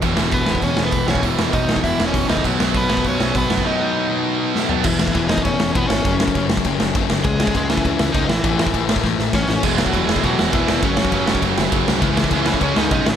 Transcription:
<<
  \new Staff \with { instrumentName = "Overdriven electric guitar" } { \time 4/4 \key e \major \tempo 4 = 200 r4 <b b'>4 <cis' cis''>8. <b b'>8. <cis' cis''>8 | r4 <dis' dis''>4 <e' e''>8. <cis' cis''>8. <dis' dis''>8 | r4 <b b'>4 <cis' cis''>4 <b b'>4 | <dis' dis''>2. r4 |
<e e'>4 <e e'>8 <dis' dis''>8 <cis' cis''>4 <b b'>8 <cis' cis''>8~ | <cis' cis''>4. r2 r8 | <gis gis'>4 <gis gis'>8 <e e'>4. <dis' dis''>8 <e e'>8~ | <e e'>4. r4. <cis' cis''>4 |
<gis gis'>8 <fis fis'>4 <gis gis'>8 <fis fis'>4 <e e'>4 | <cis' cis''>4 <cis' cis''>4 r2 | <e e'>4 <e e'>4 <cis' cis''>8 <dis' dis''>8 <dis' dis''>8 <e e'>8 | }
  \new Staff \with { instrumentName = "Distorted electric guitar" } { \clef bass \time 4/4 \key e \major <e, b, e>4. <e, b, e>2~ <e, b, e>8 | <e, b, e>4. <e, b, e>2~ <e, b, e>8 | <b, fis b>4. <b, fis b>2~ <b, fis b>8 | <b, fis b>4. <b, fis b>2~ <b, fis b>8 |
<e, b, e>4 <e, b, e>4 <e, b, e>4 <e, b, e>4 | <fis, cis fis>4 <fis, cis fis>4 <fis, cis fis>4 <fis, cis fis>4 | <cis gis cis'>4 <cis gis cis'>4 <cis gis cis'>4 <cis gis cis'>8 r8 | <a, e a>4 <a, e a>4 <a, e a>4 <a, e a>4 |
<e, b, e>4 <e, b, e>4 <e, b, e>4 <e, b, e>4 | <fis, cis fis>4 <fis, cis fis>4 <fis, cis fis>4 <fis, cis fis>4 | <cis gis cis'>4 <cis gis cis'>4 <cis gis cis'>4 <cis gis cis'>8 r8 | }
  \new Staff \with { instrumentName = "Distorted electric guitar" } { \clef bass \time 4/4 \key e \major <e, b, e>2.~ <e, b, e>8 <e, b, e>8 | <e, b, e>2.~ <e, b, e>8 <e, b, e>8 | <b, fis b>2.~ <b, fis b>8 <b, fis b>8 | <b, fis b>2.~ <b, fis b>8 <b, fis b>8 |
r1 | r1 | r1 | r1 |
<e, b, e>4 <e, b, e>4 <e, b, e>4 <e, b, e>4 | <fis, cis fis>4 <fis, cis fis>4 <fis, cis fis>4 <fis, cis fis>4 | <cis gis cis'>4 <cis gis cis'>4 <cis gis cis'>4 <cis gis cis'>8 r8 | }
  \new Staff \with { instrumentName = "Picked electric bass" } { \clef bass \time 4/4 \key e \major e,,8 e,,8 e,,8 e,,8 e,,8 e,,8 e,,8 b,,8 | e,,8 e,,8 e,,8 b,,8 e,,8 e,,8 e,,8 cis,8 | b,,8 b,,8 b,,8 b,,8 b,,8 b,,8 b,,8 fis,8 | r1 |
e,,4 e,,4 e,,8 e,,8 e,,8 gis,,8 | fis,,4 fis,,4 fis,,8 fis,,8 fis,,8 fis,,8 | cis,4 cis,4 cis,8 cis,8 cis,8 a,,8 | a,,4 a,,4 a,,8 a,,8 a,,8 a,,8 |
e,,4 e,,4 e,,8 e,,8 e,,8 f,,8 | fis,,4 fis,,4 fis,,8 fis,,8 fis,,8 c,8 | cis,4 cis,4 cis,8 cis,8 b,,8 a,,8 | }
  \new DrumStaff \with { instrumentName = "Drums" } \drummode { \time 4/4 <cymc bd>8 sn8 <hho bd>8 sn16 bd16 <hho bd>8 sn8 <hho bd>8 sn16 bd16 | <hho bd>8 sn8 <hho bd>8 sn16 bd16 <hho bd>8 sn8 <hho bd>8 sn16 bd16 | <cymc bd>8 sn8 <hho bd>8 sn16 bd16 <hho bd>8 sn8 <hho bd>8 sn16 bd16 | r4 r4 r4 sn8 tomfh8 |
<cymc bd>8 sn16 bd16 <cymc bd>8 sn16 bd16 <cymc bd>8 sn8 <cymc bd>8 sn8 | <cymc bd>8 sn16 bd16 <cymc bd>8 sn16 bd16 <cymc bd>8 sn8 <cymc bd>8 sn8 | <cymc bd>8 sn16 bd16 <cymc bd>8 sn16 bd16 <cymc bd>8 sn8 <cymc bd>8 sn8 | <cymc bd>8 sn16 bd16 <cymc bd>8 sn16 bd16 <bd sn>8 sn8 <bd sn>8 sn8 |
<cymc bd>8 sn16 bd16 <cymc bd>8 sn16 bd16 <cymc bd>8 sn8 <cymc bd>8 sn8 | <cymc bd>8 sn16 bd16 <cymc bd>8 sn16 bd16 <cymc bd>8 sn8 <cymc bd>8 sn8 | <cymc bd>8 sn16 bd16 <cymc bd>8 sn16 bd16 <cymc bd>8 sn8 <cymc bd>8 sn8 | }
>>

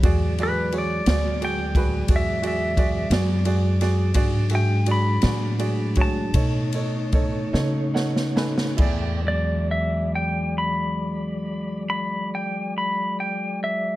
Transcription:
<<
  \new Staff \with { instrumentName = "Electric slide guitar" } { \time 12/8 \key e \mixolydian \tempo 4. = 53 r8 b'8 d''4 g''4 e''8 e''4 r4. | r8 g''8 b''4. a''2 r4. | r8 d''8 e''8 g''8 b''4. b''8 g''8 b''8 g''8 e''8 | }
  \new Staff \with { instrumentName = "Grand piano" } { \time 12/8 \key e \mixolydian <fis' gis' d''>8 <fis' gis' d''>8 <fis' gis' cis''>8 <fis' gis' d''>8 <fis' gis' d''>8 <fis' gis' b'>8 <fis' gis' d''>8 <fis' gis' d''>8 <fis' gis' d''>8 <fis' gis' d''>8 <fis' gis' d''>8 <fis' gis' d''>8 | <fis' gis' d''>8 <fis' gis' e''>8 <fis' gis' d''>8 <fis' gis' d''>8 <fis' gis' d''>8 <fis' gis' cis''>8 <dis' a' cis''>8 <dis' a' cis''>8 <dis' a' cis''>8 <dis' a' cis''>8 <dis' a' cis'' fis''>8 <dis' a' b' gis''>8 | <e' gis' d''>1. | }
  \new Staff \with { instrumentName = "Tonewheel organ" } { \time 12/8 \key e \mixolydian <fis gis d''>1. | <fis gis d'>2. <a dis' cis''>2. | <a d'' g''>8 <fis gis d''>1~ <fis gis d''>4. | }
  \new Staff \with { instrumentName = "Upright bass" } { \clef bass \time 12/8 \key e \mixolydian e,4. d,4. e,4. fis,4. | gis,4. a,4. b,4. cis4. | e,1. | }
  \new DrumStaff \with { instrumentName = "Drums" } \drummode { \time 12/8 <bd cymr>8 cymr8 cymr8 <cymr sn>8 cymr8 <bd cymr>8 <bd cymr>8 cymr8 <bd cymr>8 <cymr sn>8 cymr8 <cymr sn>8 | <bd cymr>8 cymr8 cymr8 <cymr sn>8 cymr8 <bd cymr>8 <bd cymr>8 cymr8 <bd cymr>8 sn8 sn16 sn16 sn16 sn16 | <cymc bd>4. r4. r4. r4. | }
>>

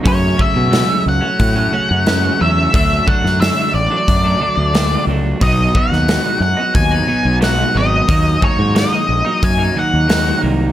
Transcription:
<<
  \new Staff \with { instrumentName = "Lead electric guitar" } { \time 4/4 \key fis \minor \tempo 4 = 90 cis''8 e''4 fis''2 e''8 | e''8 fis''8 e''8 d''2 r8 | dis''8 fis''4 fis''8 gis''4 fis''8 dis''8~ | dis''8 cis''8 dis''4 gis''8 fis''4 r8 | }
  \new Staff \with { instrumentName = "Clean electric guitar" } { \time 4/4 \key fis \minor <fis, cis fis a cis'>8 <cis fis a cis'>8 <fis, cis fis a cis'>16 <fis a cis'>8 <fis a cis'>8 <fis a cis'>16 <cis fis a cis'>8 <fis, cis fis a cis'>16 <fis a cis'>16 <cis fis a cis'>8 | <d fis a d'>8 <d fis a d'>8 <d fis a d'>16 <fis a d'>8 <fis a d'>8 <fis a d'>16 <d fis a d'>8 <d fis a d'>16 <fis a d'>16 <fis a d'>8 | <b, fis b dis'>8 <b, fis b dis'>8 <b, fis b dis'>16 <fis b dis'>8 <fis b dis'>8 <fis b dis'>16 <b, fis b dis'>8 <b, fis b dis'>16 <fis b dis'>16 <b, fis b dis'>8 | <dis fis ais dis'>8 <dis fis ais dis'>8 <dis fis ais dis'>16 <fis ais dis'>8 <fis ais dis'>8 <fis ais dis'>16 <dis fis ais dis'>8 <dis fis ais dis'>16 <fis ais dis'>16 <dis fis ais dis'>8 | }
  \new Staff \with { instrumentName = "Fingered electric bass" } { \clef bass \time 4/4 \key fis \minor fis,8 r16 b,8 r16 cis,16 r16 a,8 r16 fis,8. e,8 | d,8 r16 fis,8 r16 a,,16 r16 fis,8 r16 d,8. cis,8 | b,,8 r16 dis,8 r16 fis,16 r16 dis,8 r16 b,,8. gis,,8 | dis,8 r16 gis,8 r16 ais,,16 r16 fis,8 r16 dis,8. bis,,8 | }
  \new DrumStaff \with { instrumentName = "Drums" } \drummode { \time 4/4 <hho bd>8 bd8 <hho sn>4 <hho bd>4 <hho sn>4 | <hho bd>8 bd16 sn16 <hho sn>4 <hho bd>4 <hho sn>4 | <hho bd>8 bd16 sn16 <hho sn>4 <hho bd>4 <hho sn>4 | <hho bd>8 bd8 <hho sn>4 <hho bd>4 <hho sn>4 | }
>>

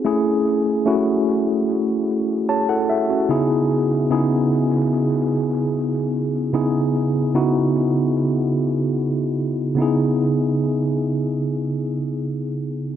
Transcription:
\new Staff \with { instrumentName = "Tine electric piano" } { \time 4/4 \key cis \minor \tempo 4 = 74 << { r2. <gis' cis'' a''>16 <e' a' fis''>16 e''16 <cis' fis'>16~ | <cis' fis'>16 r2. r8. | r1 | r1 | } \\ { <a cis' e' gis'>8 r8 <a cis' e' fis'>4~ <a cis' e' fis'>16 r4. r16 | <cis b dis' e' gis'>8 r8 <cis b dis' e' gis'>4~ <cis b dis' e' gis'>16 r4. r16 | <cis b dis' e' gis'>8 r8 <cis b dis' e' fis'>4~ <cis b dis' e' fis'>16 r4. r16 | <cis b dis' e' gis'>1 | } >> }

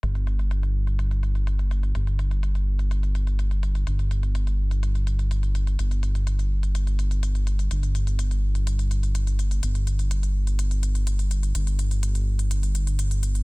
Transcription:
<<
  \new Staff \with { instrumentName = "Detuned saw bass" } { \clef bass \time 4/4 \key c \lydian \tempo 4 = 125 g,,1 | g,,1 | g,,1 | g,,1 |
g,,1 | g,,1 | g,,1 | }
  \new DrumStaff \with { instrumentName = "Drums" } \drummode { \time 4/4 hh16 hh16 hh16 hh16 hh16 hh8 hh16 hh16 hh16 hh16 hh16 hh16 hh16 hh16 hh16 | hh16 hh16 hh16 hh16 hh16 hh8 hh16 hh16 hh16 hh16 hh16 hh16 hh16 hh16 hh16 | hh16 hh16 hh16 hh16 hh16 hh8 hh16 hh16 hh16 hh16 hh16 hh16 hh16 hh16 hh16 | hh16 hh16 hh16 hh16 hh16 hh8 hh16 hh16 hh16 hh16 hh16 hh16 hh16 hh16 hh16 |
hh16 hh16 hh16 hh16 hh16 hh8 hh16 hh16 hh16 hh16 hh16 hh16 hh16 hh16 hh16 | hh16 hh16 hh16 hh16 hh16 hh8 hh16 hh16 hh16 hh16 hh16 hh16 hh16 hh16 hh16 | hh16 hh16 hh16 hh16 hh16 hh8 hh16 hh16 hh16 hh16 hh16 hh16 hh16 hh16 hh16 | }
>>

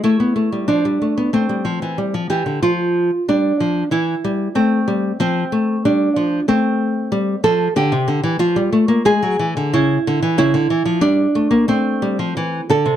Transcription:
\new Staff \with { instrumentName = "Nylon-string guitar" } { \clef bass \time 4/4 \key f \lydian \tempo 4 = 92 << { e'4 d'4 c'4. g'8 | f'4 d'4 e'4 c'4 | c'4 d'4 c'4. a'8 | \key d \minor g'4 f'4 gis'4 e'4 |
e'4 d'4 c'4. a'8 | } \\ { a16 b16 a16 g16 f16 g16 a16 b16 a16 g16 f16 e16 g16 f16 e16 d16 | f4 g8 f8 e8 g8 a8 g8 | f8 a8 g8 f8 a4 g8 f8 | d16 c16 d16 e16 f16 g16 a16 bes16 gis16 fis16 e16 d16 cis8 d16 e16 |
cis16 d16 e16 f16 g8 a16 bes16 a8 g16 f16 e8 d16 c16 | } >> }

